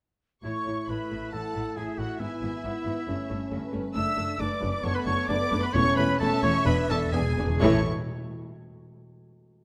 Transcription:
0.43 A1 A2 A3 E4 C#5 C#6
0.66 A1 A2 A3 E4
0.88 A1 A2 A3 E4 B4 E5 B5
1.11 A1 A2 A3 E4
1.31 A1 A2 A3 E4 A4 F#5 A5
1.54 A1 A2 A3 E4
1.76 A1 A2 A3 E4 G#4 E5 G#5
1.98 A1 A2 A3 E4 F#4 F#5
2.19 G#1 G#2 B3 E4 E5 G#5
2.42 G#1 G#2 B3 E4
2.64 G#1 G#2 B3 E4 B4
2.85 G#1 G#2 B3 E4
3.07 G1 G2 A3 C#4 C#5
3.29 G1 G2 A3 C#4
3.51 G1 G2 A3 C#4 B4
3.72 G1 G2 A3 C#4
3.94 F#1 F#2 A3 D4 A4 E5 E6
4.17 F#1 F#2 A3 D4
4.38 F#1 F#2 A3 D4 B4 D5 D6
4.61 F#1 F#2 A3 C#4 D4
4.81 F#1 F#2 A3 B3 D4 A4 C#5 C#6
4.94 B4 B5
5.06 F#1 F#2 A3 D4 C#5 C#6
5.28 F#1 F#2 A3 B3 D4 B4 D5 D6
5.51 F#1 F#2 A3 D4
5.62 B4 B5
5.73 E1 E2 A3 C#4 E4 C#5 C#6
5.96 E1 E2 A3 E4 B4 B5
6.19 E1 E2 A3 C#4 E4 A4 E5 A5
6.42 E1 E2 A3 E4 C#5 C#6
6.65 E1 E2 B3 D4 B4 B5
6.81 E2
6.88 E1 E2 B3 D4 A4 A5
6.97 E2
7.06 E2
7.12 E1 E2 B3 D4 G#4 G#5
7.21 E2
7.30 E2
7.37 E1 E2 B3 D4
7.47 E2
7.60 A1 A2 E3 A3 E4 A4 C#5 C#6

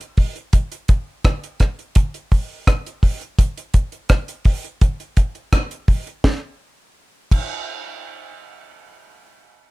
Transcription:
0.01 closed hi-hat
0.17 kick, open hi-hat
0.36 closed hi-hat
0.53 kick, closed hi-hat
0.72 closed hi-hat
0.88 kick, closed hi-hat
1.24 kick, cross-stick, closed hi-hat
1.43 closed hi-hat
1.60 kick, cross-stick, closed hi-hat
1.79 closed hi-hat
1.95 kick, closed hi-hat
2.14 closed hi-hat
2.32 kick, open hi-hat
2.67 kick, cross-stick, closed hi-hat
2.86 closed hi-hat
3.03 kick, open hi-hat
3.21 closed hi-hat
3.39 kick, closed hi-hat
3.57 closed hi-hat
3.74 kick, closed hi-hat
3.92 closed hi-hat
4.09 kick, cross-stick, closed hi-hat
4.28 closed hi-hat
4.45 kick, open hi-hat
4.64 closed hi-hat
4.81 kick, closed hi-hat
5.00 closed hi-hat
5.17 kick, closed hi-hat
5.35 closed hi-hat
5.53 kick, cross-stick, closed hi-hat
5.71 closed hi-hat
5.88 kick, open hi-hat
6.07 closed hi-hat
6.24 kick, snare
7.31 kick, crash

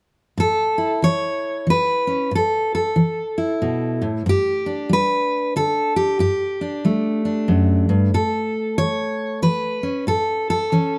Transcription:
0.38 A2 A4
0.78 E4
1.02 E3 C#5
1.67 E3 B4
2.07 C#4
2.31 A2
2.35 A4
2.75 A4
2.96 E3
3.38 E4
3.62 B2
4.02 A2
4.26 G2 G4
4.66 D4
4.89 G3 B4
5.56 D3 A4
5.96 G4
6.19 G2 G4
6.61 D4
6.85 G3 A3
7.25 D4
7.48 F#2
7.89 G2
8.14 A2 A4
8.78 E3 C#5
9.42 E3 B4
9.83 C#4
10.07 A2 A4
10.50 A4
10.72 E3 C#4

